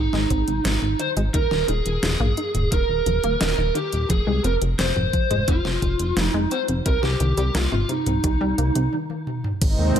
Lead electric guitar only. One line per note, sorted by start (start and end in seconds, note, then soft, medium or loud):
0.00 0.64 D#4 medium
0.65 0.97 D#4 medium
1.00 1.09 C5 loud
1.34 1.68 A#4 loud
1.69 2.72 G#4 loud
2.72 3.40 A#4 loud
3.41 3.75 A#4 loud
3.76 4.08 G4 medium
4.10 4.44 G#4 loud
4.45 4.54 A#4 medium
4.79 5.50 C5 loud
5.48 6.22 F4 medium
6.22 6.55 D#4 medium
6.52 6.61 C5 loud
6.86 7.02 A#4 loud
7.03 7.57 G4 medium
7.55 7.71 F4 medium
7.72 7.90 F4 medium
7.90 8.93 D#4 medium